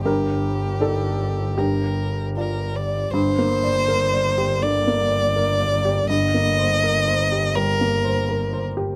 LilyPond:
<<
  \new Staff \with { instrumentName = "Violin" } { \time 4/4 \key g \minor \tempo 4 = 81 g'2 bes'4 bes'8 d''8 | c''2 d''2 | ees''2 bes'4. r8 | }
  \new Staff \with { instrumentName = "Felt piano" } { \time 4/4 \key g \minor << { bes'4 a'4 g'4. r8 | r1 | r1 | } \\ { g,4 <ees' d''>4 g,4 <f' d''>4 | \tuplet 3/2 { g,8 bes8 d''8 bes'8 d''8 g'8 d8 bes8 d''8 bes'8 d''8 g'8 } | \tuplet 3/2 { g,8 bes8 c''8 bes'8 c''8 g'8 g8 bes8 c''8 bes'8 c''8 g'8 } | } >> }
  \new Staff \with { instrumentName = "Double bass" } { \clef bass \time 4/4 \key g \minor g,,1 | g,,1~ | g,,1 | }
>>